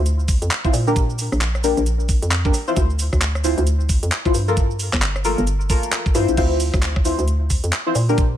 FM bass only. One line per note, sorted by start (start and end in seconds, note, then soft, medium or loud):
0.00 0.39 D2 loud
0.42 0.50 F2 medium
0.73 1.29 A#2 medium
1.32 1.75 A#1 medium
1.77 2.20 A#1 loud
2.22 2.52 F2 medium
2.76 3.10 D2 loud
3.13 3.55 D2 medium
3.58 4.00 D2 loud
4.03 4.11 F2 medium
4.34 4.90 G2 medium
4.93 5.35 G1 medium
5.38 5.80 G1 medium
6.15 6.27 G2 loud
6.29 6.36 A#1 medium
6.37 6.71 D2 loud
6.74 7.16 D2 medium
7.19 7.61 D2 loud
7.64 7.72 F2 medium
7.95 8.37 A#2 medium